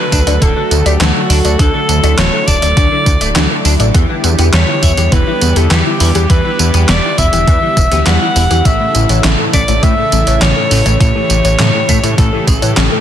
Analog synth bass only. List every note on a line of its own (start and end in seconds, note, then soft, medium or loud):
0.12 0.24 D2 medium
0.27 0.38 D2 medium
0.42 0.53 D1 loud
0.71 0.82 D2 loud
0.86 0.97 D2 medium
1.00 1.12 D2 loud
1.30 1.41 D2 medium
1.45 1.56 D2 medium
1.59 1.71 D2 loud
1.89 2.00 D2 medium
2.03 2.15 D2 medium
2.18 2.29 D1 loud
2.48 2.59 D1 loud
2.62 2.74 D1 medium
2.77 2.88 D2 loud
3.06 3.18 D2 medium
3.21 3.32 D1 medium
3.36 3.47 D2 loud
3.65 3.77 D2 loud
3.80 3.91 A1 medium
3.95 4.06 E2 loud
4.24 4.35 E2 medium
4.39 4.50 E2 medium
4.53 4.65 E2 loud
4.83 4.94 E2 loud
4.98 5.09 E2 medium
5.12 5.24 E1 loud
5.42 5.53 E2 medium
5.56 5.68 E2 medium
5.71 5.82 E2 loud
6.01 6.12 E2 loud
6.15 6.27 E2 medium
6.30 6.41 E2 loud
6.59 6.71 E2 medium
6.74 6.85 E2 medium
6.89 7.00 E1 loud
7.18 7.30 E1 medium
7.33 7.44 E1 medium
7.48 7.59 E2 loud
7.77 7.88 E1 medium
7.92 8.03 D2 medium
8.07 8.18 E2 loud
8.36 8.47 E1 loud
8.51 8.62 E2 medium
8.65 8.77 A1 loud
8.95 9.06 A1 loud
9.09 9.21 A1 medium
9.24 9.36 A1 loud
9.53 9.65 A1 medium
9.68 9.80 A1 medium
9.83 9.94 A2 loud
10.12 10.24 A1 medium
10.27 10.38 A1 medium
10.42 10.53 A1 loud
10.71 10.83 A1 loud
10.86 10.97 A1 medium
11.01 11.12 A1 loud
11.30 11.41 A1 loud
11.45 11.56 A1 medium
11.59 11.71 A2 loud
11.89 12.00 A2 medium
12.04 12.15 A2 medium
12.18 12.30 A1 loud
12.47 12.59 A1 loud
12.62 12.74 A2 medium
12.77 12.88 A1 loud